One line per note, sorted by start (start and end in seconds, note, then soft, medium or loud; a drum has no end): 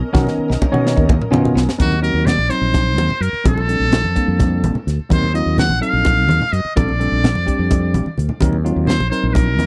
0.00 1.77 C#4 medium
0.00 1.77 A#4 medium
0.00 1.77 D#5 medium
0.13 0.25 B1 loud
0.13 0.50 D#3 medium
0.13 0.51 B3 medium
0.13 0.51 C#4 medium
0.13 0.31 F#4 medium
0.13 0.51 A#4 loud
0.13 kick loud
0.13 snare medium
0.13 high conga medium
0.27 snare soft
0.27 low conga medium
0.38 muted fretless electric bass stroke soft
0.50 0.61 B1 medium
0.50 0.67 D#4 medium
0.50 snare medium
0.61 muted fretless electric bass stroke soft
0.61 kick medium
0.61 low conga medium
0.72 0.95 B2 medium
0.72 1.10 D#3 medium
0.72 1.10 B3 medium
0.72 1.10 C#4 medium
0.72 0.91 F#4 medium
0.72 1.10 C#5 loud
0.72 high conga medium
0.87 snare medium
0.97 1.19 D#2 medium
0.97 1.14 D#4 medium
0.97 kick medium
1.09 kick loud
1.09 low conga medium
1.20 muted fretless electric bass stroke soft
1.20 mid tom medium
1.31 1.53 B2 medium
1.31 1.61 D#3 medium
1.31 1.61 B3 medium
1.31 1.61 C#4 medium
1.31 1.49 C#4 medium
1.31 1.62 F4 loud
1.31 1.76 G#5 medium
1.31 floor tom medium
1.31 high conga medium
1.31 low conga soft
1.45 low conga medium
1.56 1.66 B1 medium
1.56 1.73 B3 medium
1.56 snare medium
1.56 low conga soft
1.69 snare medium
1.78 2.12 D#2 medium
1.78 1.94 F#3 medium
1.78 1.94 C4 medium
1.78 1.94 D#4 medium
1.78 2.02 F#4 medium
1.78 1.94 A#4 medium
1.78 kick medium
1.78 closed hi-hat medium
1.78 high conga medium
1.92 low conga medium
2.01 2.32 F#3 medium
2.01 2.32 C4 medium
2.01 2.33 D#4 medium
2.01 2.33 F#4 medium
2.01 2.28 A#4 medium
2.01 closed hi-hat medium
2.14 2.36 D#2 medium
2.26 2.52 D5 medium
2.26 snare loud
2.26 closed hi-hat medium
2.26 low conga medium
2.38 2.49 A#1 medium
2.38 high conga medium
2.49 3.09 F#3 medium
2.49 3.09 C4 medium
2.49 3.09 D#4 medium
2.49 3.09 C5 medium
2.49 3.23 C5 medium
2.49 snare soft
2.49 closed hi-hat medium
2.61 2.98 A#1 medium
2.74 kick medium
2.74 snare soft
2.74 closed hi-hat medium
2.74 low conga medium
2.98 3.09 D#2 medium
2.98 closed hi-hat medium
2.98 high conga medium
3.09 muted fretless electric bass stroke soft
3.09 low conga medium
3.20 3.32 F#2 medium
3.20 3.45 A#4 medium
3.20 closed hi-hat medium
3.33 muted fretless electric bass stroke soft
3.33 low conga soft
3.44 3.77 A#1 medium
3.44 3.60 G3 medium
3.44 3.60 C4 medium
3.44 3.60 D4 medium
3.44 3.60 A4 medium
3.44 4.84 A4 medium
3.44 kick loud
3.44 closed hi-hat medium
3.44 high conga medium
3.58 low conga medium
3.68 3.98 G3 medium
3.68 3.98 C4 medium
3.68 3.99 D4 medium
3.68 3.99 A4 medium
3.68 closed hi-hat medium
3.80 4.02 A#1 medium
3.92 snare loud
3.92 closed hi-hat medium
3.92 low conga medium
4.04 4.15 F2 medium
4.04 high conga medium
4.15 4.75 G3 medium
4.15 4.75 A#3 medium
4.15 4.75 C4 medium
4.15 4.75 D4 medium
4.15 kick medium
4.15 closed hi-hat medium
4.28 4.65 F2 medium
4.40 kick medium
4.40 snare soft
4.40 closed hi-hat medium
4.40 low conga medium
4.63 4.74 A#1 medium
4.63 closed hi-hat medium
4.63 high conga medium
4.75 low conga medium
4.87 4.98 D2 medium
4.87 snare soft
4.87 closed hi-hat medium
4.99 muted fretless electric bass stroke soft
4.99 low conga soft
5.09 5.43 D#2 medium
5.09 5.25 F#3 medium
5.09 5.25 C4 medium
5.09 5.25 D#4 medium
5.09 5.25 A#4 medium
5.09 5.34 C5 medium
5.09 kick medium
5.09 closed hi-hat medium
5.09 high conga medium
5.22 low conga medium
5.33 5.63 F#3 medium
5.33 5.64 C4 medium
5.33 5.64 D#4 medium
5.33 5.64 F4 medium
5.33 5.57 D#5 medium
5.33 closed hi-hat medium
5.46 5.67 D#2 medium
5.58 5.81 F#5 loud
5.58 snare loud
5.58 closed hi-hat medium
5.58 low conga medium
5.69 5.80 A#1 medium
5.69 high conga medium
5.81 6.40 F#3 medium
5.81 6.40 C4 medium
5.81 6.41 D#4 medium
5.81 6.41 A4 medium
5.81 6.54 F5 medium
5.81 closed hi-hat medium
5.93 6.29 A#1 medium
6.05 kick loud
6.05 closed hi-hat medium
6.05 low conga medium
6.29 6.39 D#2 medium
6.29 closed hi-hat medium
6.29 high conga medium
6.41 muted fretless electric bass stroke soft
6.41 low conga medium
6.52 6.63 F#2 medium
6.52 6.76 D#5 medium
6.52 closed hi-hat medium
6.65 muted fretless electric bass stroke soft
6.65 low conga soft
6.76 7.08 A#1 medium
6.76 6.91 G3 medium
6.76 6.91 C4 medium
6.76 6.91 D4 medium
6.76 6.91 A4 medium
6.76 8.14 D5 medium
6.76 kick loud
6.76 closed hi-hat medium
6.76 high conga medium
6.89 low conga medium
7.00 7.29 G3 medium
7.00 7.29 C4 medium
7.00 7.29 D4 medium
7.00 7.30 A4 medium
7.00 closed hi-hat medium
7.00 low conga soft
7.12 7.33 A#1 medium
7.24 snare loud
7.24 closed hi-hat medium
7.24 low conga medium
7.35 7.46 F2 medium
7.35 high conga medium
7.46 8.05 G3 medium
7.46 8.06 C4 medium
7.46 8.06 D4 medium
7.46 8.06 G4 medium
7.46 kick medium
7.46 closed hi-hat medium
7.46 low conga soft
7.59 7.95 F2 medium
7.71 kick loud
7.71 closed hi-hat medium
7.71 low conga medium
7.94 8.05 A#1 medium
7.94 closed hi-hat medium
7.94 high conga medium
8.06 high conga soft
8.18 8.28 D2 medium
8.18 closed hi-hat medium
8.18 low conga medium
8.29 muted fretless electric bass stroke soft
8.29 low conga medium
8.41 8.73 D#2 medium
8.41 8.56 F#3 medium
8.41 8.56 C4 medium
8.41 8.56 D#4 medium
8.41 8.56 A#4 medium
8.41 kick loud
8.41 closed hi-hat medium
8.41 high conga medium
8.53 low conga medium
8.64 8.94 F#3 medium
8.64 8.94 C4 medium
8.64 8.94 D#4 medium
8.64 8.94 F4 medium
8.64 closed hi-hat medium
8.76 8.98 D#2 medium
8.87 9.09 C5 medium
8.87 snare loud
8.87 closed hi-hat medium
8.87 low conga medium
9.00 9.10 A#1 medium
9.00 high conga medium
9.10 9.66 F#3 medium
9.10 9.66 C4 medium
9.10 9.66 D#4 medium
9.10 9.66 A#4 medium
9.10 9.27 C5 medium
9.10 closed hi-hat medium
9.23 9.59 A#1 medium
9.23 9.35 C5 medium
9.33 9.66 A#4 medium
9.33 kick medium
9.33 closed hi-hat medium
9.33 low conga medium
9.59 9.66 D#2 medium
9.59 closed hi-hat medium
9.59 high conga medium